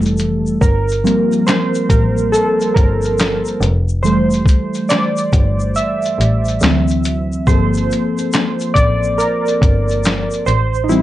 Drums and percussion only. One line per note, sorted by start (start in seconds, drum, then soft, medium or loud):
0.02 shaker soft
0.06 shaker medium
0.17 closed hi-hat medium
0.17 shaker soft
0.20 shaker soft
0.46 shaker soft
0.61 kick loud
0.61 shaker medium
0.89 shaker soft
0.92 shaker soft
1.05 closed hi-hat medium
1.05 shaker soft
1.07 shaker soft
1.32 shaker soft
1.47 snare loud
1.47 clap medium
1.47 shaker medium
1.75 shaker medium
1.75 shaker soft
1.90 kick loud
1.90 closed hi-hat medium
1.90 shaker soft
2.18 shaker soft
2.34 shaker medium
2.60 shaker soft
2.60 shaker medium
2.76 kick loud
2.76 closed hi-hat medium
2.76 shaker soft
3.02 shaker soft
3.05 shaker soft
3.18 shaker medium
3.20 snare loud
3.20 clap medium
3.20 shaker medium
3.45 shaker soft
3.48 shaker soft
3.61 closed hi-hat medium
3.61 shaker soft
3.89 shaker soft
4.04 shaker medium
4.06 shaker medium
4.31 shaker medium
4.34 shaker medium
4.46 kick loud
4.46 closed hi-hat medium
4.46 shaker soft
4.74 shaker soft
4.89 snare medium
4.89 clap medium
4.89 shaker medium
5.17 shaker medium
5.33 kick medium
5.33 closed hi-hat medium
5.33 shaker soft
5.60 shaker soft
5.75 shaker medium
5.77 shaker medium
6.02 shaker soft
6.05 shaker medium
6.21 closed hi-hat medium
6.21 shaker soft
6.45 shaker soft
6.48 shaker soft
6.60 shaker medium
6.63 snare loud
6.63 clap medium
6.63 shaker medium
6.88 shaker soft
6.90 shaker soft
7.04 closed hi-hat medium
7.04 shaker medium
7.04 shaker soft
7.32 shaker soft
7.47 kick loud
7.47 shaker medium
7.49 shaker medium
7.74 shaker medium
7.77 shaker soft
7.91 closed hi-hat medium
7.91 shaker soft
7.93 shaker soft
8.18 shaker soft
8.33 snare loud
8.33 clap medium
8.33 shaker medium
8.60 shaker soft
8.60 shaker medium
8.76 kick medium
8.76 closed hi-hat medium
8.76 shaker soft
9.04 shaker soft
9.19 shaker medium
9.46 shaker soft
9.48 shaker medium
9.62 kick medium
9.62 closed hi-hat medium
9.62 shaker soft
9.89 shaker soft
9.91 shaker soft
10.04 shaker medium
10.06 snare loud
10.06 clap medium
10.06 shaker medium
10.31 shaker soft
10.33 shaker soft
10.47 closed hi-hat medium
10.47 shaker soft
10.48 shaker soft
10.74 shaker soft
10.90 shaker medium
10.91 shaker soft